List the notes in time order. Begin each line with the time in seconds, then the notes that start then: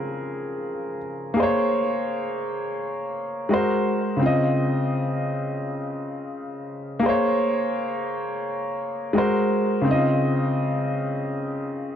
Already playing: C#3 F3 C4 G#4 A#4
1.34 A#3 G#4
1.40 C5 C#5
3.49 G#3 F#4 A#4
3.53 C5
4.17 C#3 C4
4.23 F4 D#5
7.00 A#3 G#4
7.06 C5 C#5
9.13 G#3 F#4 A#4
9.18 C5
9.81 C#3 C4
9.88 D#4 D#5
9.94 F4